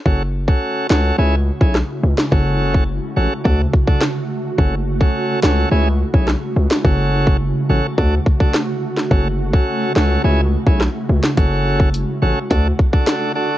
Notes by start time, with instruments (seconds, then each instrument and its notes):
0.05 808-style bass F#1, ambient pad C#3, tonewheel organ C#4 F#4 A4, kick
0.48 tonewheel organ C#4 F#4 A4, kick
0.90 808-style bass C#2, tonewheel organ C#4 F#4 A4, snare
1.18 808-style bass C#2, tonewheel organ C#4 E4 G#4
1.61 808-style bass B1, tonewheel organ C#4 E4 G#4, kick
1.75 cross-stick, snare
2.03 808-style bass C#2
2.18 snare
2.32 808-style bass F#1, tonewheel organ C#4 F#4 A4, kick
2.74 kick
3.16 808-style bass A1, tonewheel organ C#4 F#4 A4
3.44 808-style bass D2, tonewheel organ D4 F#4 A4, kick
3.74 kick
3.87 tonewheel organ D4 F#4 A4, kick
4.01 cross-stick, snare
4.58 808-style bass F#1, tonewheel organ C#4 F#4 A4, kick
5.00 tonewheel organ C#4 F#4 A4, kick
5.43 808-style bass C#2, tonewheel organ C#4 F#4 A4, snare
5.71 808-style bass C#2, ambient pad C#3, tonewheel organ C#4 E4 G#4
6.14 808-style bass B1, tonewheel organ C#4 E4 G#4, kick
6.28 cross-stick, snare
6.56 808-style bass C#2
6.71 snare
6.84 808-style bass F#1, ambient pad A3 F#4, tonewheel organ C#4 F#4 A4, kick
7.27 kick
7.69 808-style bass A1, tonewheel organ C#4 F#4 A4
7.98 808-style bass D2, tonewheel organ D4 F#4 A4, kick
8.26 kick
8.40 tonewheel organ D4 F#4 A4, kick
8.54 cross-stick, snare
8.97 snare
9.11 808-style bass F#1, ambient pad C#3, tonewheel organ C#4 F#4 A4, kick
9.53 tonewheel organ C#4 F#4 A4, kick
9.96 808-style bass C#2, tonewheel organ C#4 F#4 A4, snare
10.24 808-style bass C#2, tonewheel organ C#4 E4 G#4
10.66 808-style bass B1, tonewheel organ C#4 E4 G#4, kick
10.81 cross-stick, snare
11.09 808-style bass C#2
11.24 snare
11.37 808-style bass F#1, tonewheel organ C#4 F#4 A4, ambient pad F#4, kick, closed hi-hat
11.80 kick
11.94 closed hi-hat
12.22 808-style bass A1, tonewheel organ C#4 F#4 A4
12.50 808-style bass D2, ambient pad A3, tonewheel organ D4 F#4 A4, kick, closed hi-hat
12.79 kick
12.93 tonewheel organ D4 F#4 A4, kick
13.07 cross-stick, snare, closed hi-hat
13.35 tonewheel organ D4 F#4 A4